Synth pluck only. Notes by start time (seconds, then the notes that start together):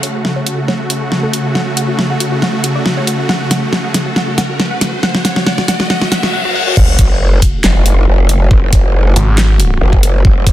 0.03 C#5
0.15 F#4
0.25 F#4
0.36 C#5
0.47 F#4
0.58 F#4
0.68 C#5
0.80 F#4
0.90 F#4
1.01 A4
1.12 F#4
1.23 A4
1.33 F#4
1.45 F#4
1.55 F#5
1.67 F#4
1.77 F#5
1.88 F#4
1.99 F#4
2.10 F#5
2.20 F#4
2.32 F#4
2.42 F#5
2.54 F#4
2.64 F#4
2.75 D5
2.86 F#4
2.97 C#5
3.07 F#4
3.19 F#4
3.29 F#5
3.41 F#4
3.51 F#5
3.63 F#4
3.73 F#4
3.84 F#5
3.94 F#4
4.06 F#4
4.16 F#5
4.28 F#4
4.38 F#5
4.49 F#4
4.60 F#4
4.71 F#5
4.81 F#4
4.93 F#4
5.03 F#5
5.15 F#4
5.25 F#5
5.36 F#4
5.47 F#5
5.58 F#4
5.68 F#5
5.80 F#4
5.90 F#5
6.02 F#4
6.12 F#5
6.23 F#4
6.34 F#5
6.45 F#4
6.55 F#5
6.67 F#4